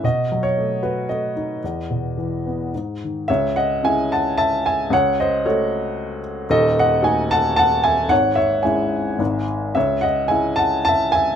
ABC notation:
X:1
M:3/4
L:1/16
Q:1/4=111
K:E
V:1 name="Upright piano"
d3 c3 B2 d4- | d8 z4 | [K:C#m] [ce]2 [df]2 [eg]2 [fa]2 [ea]2 [eg]2 | [cf]2 [^Bd]2 c6 z2 |
[Ad]2 [df]2 [dg]2 [fa]2 [fa]2 [eg]2 | [cf]2 [ce]2 [eg]6 z2 | [ce]2 [df]2 [eg]2 [fa]2 [ea]2 [eg]2 |]
V:2 name="Upright piano" clef=bass
B,,2 F,2 A,2 F2 A,2 D2 | E,,2 B,,2 E,2 B,2 G,,2 D,2 | [K:C#m] C,,4 [CEG]8 | C,,4 [A,FA]8 |
[D,,,D,,]4 [A,DF]8 | [G,,,G,,]4 [G,CE]4 [G,,,G,,]4 | C,,4 [G,CE]8 |]